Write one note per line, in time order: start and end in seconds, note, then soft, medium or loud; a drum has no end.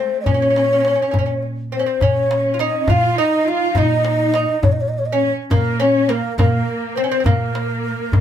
0.00 0.26 A3 medium
0.00 0.26 C4 medium
0.00 0.17 C5 medium
0.20 1.41 C#5 medium
0.20 0.25 D#5 medium
0.26 0.94 A#2 medium
0.26 1.43 C#4 medium
0.26 0.33 C#4 medium
0.26 tombak dum medium
0.34 0.41 C#4 medium
0.42 0.49 C#4 medium
0.50 0.56 C#4 soft
0.56 0.63 C#4 medium
0.56 tombak tek medium
0.64 0.71 C#4 soft
0.73 0.79 C#4 medium
0.80 0.87 C#4 soft
0.85 0.94 C#4 medium
0.85 tombak tek medium
0.95 1.01 C#4 soft
1.00 1.09 C#4 medium
1.00 tombak ka soft
1.11 1.81 A#2 medium
1.11 1.17 C#4 soft
1.11 tombak dum medium
1.19 1.25 C#4 medium
1.26 1.32 C#4 soft
1.42 tombak ka soft
1.72 1.79 C4 medium
1.72 1.99 C4 medium
1.72 2.04 C5 medium
1.79 1.86 C#4 medium
1.86 2.02 C4 medium
2.00 2.68 A#2 medium
2.00 2.89 C#4 medium
2.00 2.54 C#4 medium
2.00 2.62 C#5 loud
2.00 tombak dum medium
2.31 tombak tek medium
2.54 2.60 F4 medium
2.59 2.89 D#4 medium
2.59 2.92 D#5 medium
2.59 tombak tek medium
2.73 tombak ka soft
2.88 3.10 A#2 loud
2.88 3.17 F4 medium
2.88 3.18 F4 medium
2.88 3.18 F5 loud
2.88 tombak dum medium
3.18 3.47 D#4 medium
3.18 3.76 D#4 medium
3.18 3.49 D#5 medium
3.46 3.76 F4 medium
3.46 3.78 F5 medium
3.75 4.43 A#2 loud
3.75 4.64 D#4 medium
3.75 4.34 D#4 medium
3.75 4.65 D#5 loud
3.75 tombak dum medium
4.05 tombak tek medium
4.34 4.61 D#4 medium
4.34 tombak tek medium
4.49 tombak ka soft
4.62 5.30 A#2 medium
4.62 4.73 C#5 medium
4.62 tombak dum loud
4.71 4.82 D#5 medium
4.80 4.89 C#5 medium
4.88 4.99 D#5 medium
4.94 tombak ka soft
4.98 5.07 C#5 medium
5.05 5.15 D#5 medium
5.12 5.28 C#4 medium
5.12 5.29 C#5 medium
5.50 6.18 A#2 medium
5.50 5.79 A#3 medium
5.50 5.78 A#3 medium
5.50 5.82 A#4 medium
5.50 tombak dum medium
5.80 6.08 C#4 medium
5.80 6.10 C#4 medium
5.80 6.11 C#5 medium
5.80 tombak tek medium
6.09 6.37 A#3 medium
6.09 6.37 A#4 medium
6.09 tombak tek medium
6.24 tombak ka soft
6.38 6.60 A#2 loud
6.38 6.92 A#3 medium
6.38 6.97 A#3 medium
6.38 6.97 A#4 medium
6.38 tombak dum loud
6.68 tombak ka soft
6.96 7.25 C4 medium
6.96 7.03 C4 medium
6.96 7.26 C5 medium
7.04 7.10 C#4 medium
7.12 7.19 C4 medium
7.20 7.26 C4 medium
7.24 7.92 A#2 medium
7.24 8.21 A#3 medium
7.24 8.21 A#4 medium
7.24 tombak dum loud
7.55 tombak tek medium
7.99 tombak ka soft
8.12 8.21 A#2 medium
8.12 tombak dum medium